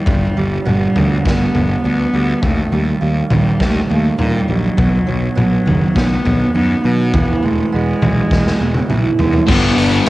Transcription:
Already playing: cello G3
0.06 picked electric bass G1, steel-string acoustic guitar G2, kick, floor tom
0.37 picked electric bass G1, steel-string acoustic guitar G3
0.64 picked electric bass G1, cello G3, steel-string acoustic guitar B3, mid tom
0.96 picked electric bass D2, steel-string acoustic guitar D3, floor tom
1.23 picked electric bass G1, steel-string acoustic guitar G3, cello B3, kick, snare
1.55 picked electric bass G1, steel-string acoustic guitar B3, floor tom
1.82 picked electric bass D2, cello B3, steel-string acoustic guitar D4
2.14 picked electric bass D2, steel-string acoustic guitar G3
2.41 picked electric bass D#2, steel-string acoustic guitar D#3, cello A3, kick, floor tom
2.72 picked electric bass D#2, steel-string acoustic guitar G3
3.01 picked electric bass D#2, steel-string acoustic guitar A#3
3.30 picked electric bass A#1, steel-string acoustic guitar D#3, cello G3, floor tom, mid tom
3.60 picked electric bass D#2, steel-string acoustic guitar G3, cello A3, kick, snare
3.90 picked electric bass D#2, cello A3, steel-string acoustic guitar A#3
4.18 picked electric bass A#2, cello G3, steel-string acoustic guitar D#4, floor tom
4.48 picked electric bass A#1, cello F#3, steel-string acoustic guitar G3
4.77 picked electric bass B1, steel-string acoustic guitar B2, kick, floor tom
5.07 picked electric bass B1, steel-string acoustic guitar F#3
5.36 picked electric bass B1, cello F#3, steel-string acoustic guitar B3, mid tom
5.66 picked electric bass F#1, steel-string acoustic guitar D#3, floor tom
5.95 picked electric bass B1, steel-string acoustic guitar F#3, cello B3, kick, snare
6.25 picked electric bass B1, steel-string acoustic guitar B3, floor tom
6.54 picked electric bass F#2, cello B3, steel-string acoustic guitar D#4
6.83 picked electric bass B2, steel-string acoustic guitar F#3, cello B3
7.14 picked electric bass E1, steel-string acoustic guitar E3, kick, floor tom
7.42 picked electric bass E1, steel-string acoustic guitar G#3, cello A3
7.72 picked electric bass E1, cello G#3, steel-string acoustic guitar B3
8.02 picked electric bass B1, steel-string acoustic guitar E3, floor tom, mid tom
8.31 picked electric bass E1, steel-string acoustic guitar G#3, kick, snare
8.47 snare
8.60 picked electric bass E1, steel-string acoustic guitar B3
8.74 high tom
8.90 picked electric bass B1, steel-string acoustic guitar E4, mid tom
9.19 picked electric bass E2, steel-string acoustic guitar G#3, floor tom
9.33 floor tom
9.41 cello A3
9.48 picked electric bass G1, distorted electric guitar G2 D3 G3 B3 D4, cello B3, kick, crash
9.77 picked electric bass G1, open hi-hat

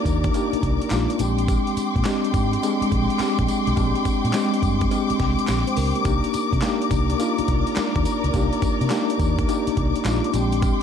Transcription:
Already playing: tine electric piano A#3 D4 D#4 F4 G4, string section A#4 D5 D6
0.05 fingered electric bass D#2, kick, closed hi-hat, tambourine
0.24 kick, closed hi-hat
0.34 tine electric piano A#3 D4 D#4 G4, closed hi-hat, tambourine, cowbell
0.53 muted fingered electric bass stroke, closed hi-hat
0.63 fingered electric bass C2, kick, closed hi-hat
0.82 closed hi-hat
0.90 fingered electric bass A#1, tine electric piano A#3 D4 D#4 F4, snare, clap, closed hi-hat, tambourine, cowbell
1.10 closed hi-hat
1.19 fingered electric bass A#1, tine electric piano G#3 C4 D4 G4, string section G#3 G5 C6, closed hi-hat, tambourine
1.38 closed hi-hat
1.48 kick, closed hi-hat, tambourine, cowbell
1.67 closed hi-hat
1.77 muted fingered electric bass stroke, closed hi-hat, tambourine
1.96 fingered electric bass A#2, kick, closed hi-hat
2.05 tine electric piano G#3 C4 D4 G4, snare, clap, closed hi-hat, tambourine, cowbell
2.25 closed hi-hat
2.34 fingered electric bass G#2, kick, closed hi-hat, tambourine
2.53 closed hi-hat
2.63 tine electric piano G#3 C4 D4 G#4, closed hi-hat, tambourine, cowbell
2.81 muted fingered electric bass stroke, closed hi-hat
2.92 fingered electric bass A#1, kick, closed hi-hat
3.10 closed hi-hat
3.20 tine electric piano G#3 C4 D4 G4, muted fingered electric bass stroke, snare, clap, closed hi-hat, tambourine, cowbell
3.39 fingered electric bass A#1, kick, closed hi-hat
3.48 closed hi-hat, tambourine
3.67 fingered electric bass B1, closed hi-hat
3.76 fingered electric bass A#1, tine electric piano G#3 C4 D4 G4, kick, closed hi-hat, tambourine, cowbell
3.95 closed hi-hat
4.05 muted fingered electric bass stroke, kick, closed hi-hat, tambourine
4.25 fingered electric bass A#2, closed hi-hat
4.33 tine electric piano G#3 C4 D4 G4, snare, clap, closed hi-hat, tambourine, cowbell
4.54 closed hi-hat
4.62 fingered electric bass G2, kick, closed hi-hat, tambourine
4.81 kick, closed hi-hat
4.91 tine electric piano G#3 C4 D4 G4, closed hi-hat, tambourine, cowbell
5.10 muted fingered electric bass stroke, closed hi-hat
5.20 fingered electric bass C2, kick, snare, closed hi-hat
5.39 closed hi-hat
5.48 fingered electric bass A#1, snare, clap, closed hi-hat, tambourine, cowbell
5.67 tine electric piano C5, closed hi-hat
5.77 fingered electric bass C#2, tine electric piano D4 A#4, open hi-hat, tambourine
5.95 tine electric piano A#3 G4, closed hi-hat
6.05 fingered electric bass C2, tine electric piano A#3 D4 D#4 G4, string section A#4 D5, kick, closed hi-hat, tambourine, cowbell
6.24 closed hi-hat
6.34 muted fingered electric bass stroke, closed hi-hat, tambourine
6.53 fingered electric bass C3, kick, closed hi-hat
6.62 tine electric piano A#3 D4 D#4 G4, snare, clap, closed hi-hat, tambourine, cowbell
6.82 closed hi-hat
6.91 fingered electric bass C2, kick, closed hi-hat, tambourine
7.10 closed hi-hat
7.19 tine electric piano A#3 D4 D#4 F4, closed hi-hat, tambourine, cowbell
7.38 muted fingered electric bass stroke, closed hi-hat
7.48 fingered electric bass C2, kick, closed hi-hat
7.67 closed hi-hat
7.76 tine electric piano A#3 D4 D#4 A#4, muted fingered electric bass stroke, snare, clap, closed hi-hat, tambourine, cowbell
7.96 fingered electric bass D#2, kick, closed hi-hat
8.05 closed hi-hat, tambourine
8.24 fingered electric bass C#2, closed hi-hat
8.33 fingered electric bass C2, tine electric piano A#3 D4 D#4 G4, kick, closed hi-hat, tambourine, cowbell
8.53 closed hi-hat
8.62 muted fingered electric bass stroke, kick, closed hi-hat, tambourine
8.81 fingered electric bass C3, closed hi-hat
8.90 tine electric piano A#3 D4 D#4 G4, snare, clap, closed hi-hat, tambourine, cowbell
9.10 closed hi-hat
9.19 fingered electric bass D#2, kick, closed hi-hat, tambourine
9.39 kick, closed hi-hat
9.48 tine electric piano A#3 D4 D#4 G4, closed hi-hat, tambourine, cowbell
9.67 muted fingered electric bass stroke, closed hi-hat
9.77 fingered electric bass C2, kick, closed hi-hat
9.96 closed hi-hat
10.05 fingered electric bass A#1, tine electric piano A#3 D4 D#4 F4, snare, clap, closed hi-hat, tambourine, cowbell
10.24 closed hi-hat
10.34 fingered electric bass A#1, tine electric piano G#3 C4 D4 G4, string section G#3 G5 C6, closed hi-hat, tambourine
10.52 closed hi-hat
10.62 kick, closed hi-hat, tambourine, cowbell

